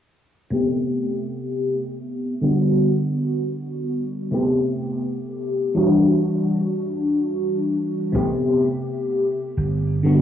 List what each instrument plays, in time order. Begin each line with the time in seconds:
0.50 fm electric piano C3 A3 B3 G4
2.41 fm electric piano D3 G3 B3 F#4
4.31 fm electric piano C3 A3 B3 G4
5.74 fm electric piano E3 G3 D4 F#4
8.12 slap bass A1, fm electric piano C3 A3 B3 G4
9.57 slap bass G1
10.03 fm electric piano D3 G3 B3 F#4